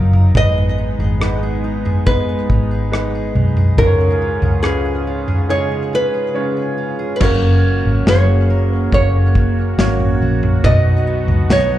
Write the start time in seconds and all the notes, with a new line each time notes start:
Already playing: F#1 A#2 F#3 D#4 F4 A#4 F5
0.13 A#4, floor tom
0.35 G#1 G#2 G#3 B3 D#4 G#4 B4 D#5, kick, floor tom
0.58 B3
0.78 D#4
0.99 G#1 G#4, floor tom
1.20 G#3 B3 D#4 B4, cross-stick
1.43 G#4
1.64 D#4
1.85 G#4, floor tom
2.06 G#2 G#3 B3 D#4 G#4 B4, kick, floor tom
2.29 B3
2.50 G#1 D#4, kick
2.71 G#4
2.91 G#3 B3 D#4 B4, cross-stick
3.15 G#4
3.35 B1 D#4, floor tom
3.57 G#4, floor tom
3.78 C#2 G#2 C#3 G#3 C#4 F4 G#4 A#4 B4, kick, floor tom
3.86 C#5
4.01 C#4
4.22 F4
4.42 C#2 G#4, floor tom
4.63 G#3 C#4 F4 G#4 B4, cross-stick
4.85 G#4
5.07 F4
5.28 G#4, floor tom
5.49 C#3 G#3 C#4 D#4 G#4 C#5
5.55 F4
5.72 C#4
5.93 F4 B4
6.14 G#4
6.34 G#3 C#4 F4 C#5
6.57 G#4
6.78 F4
6.99 G#4
7.16 B4
7.21 F#1 C#3 F#3 A#3 C#4 F#4 A#4 C#5, kick, floor tom, crash
7.64 C#4
7.85 G#1
8.06 F#1 A#3 C#4 F#4 G#4 C#5, snare
8.50 A#4
8.72 B4
8.92 F#1 A#3 C#4 F#4 C#5, kick, floor tom
9.35 F#4, kick
9.78 G#1 A#3 C#4 F#4 A#4 C#5, snare
10.00 floor tom
10.21 A#1 F#4
10.43 floor tom
10.63 B1 B2 F#3 B3 D#4 F#4 D5 D#5, kick, floor tom
10.71 D#5
11.07 B3
11.27 C#2, floor tom
11.49 B1 B3 D#4 F#4 C#5 D#5, snare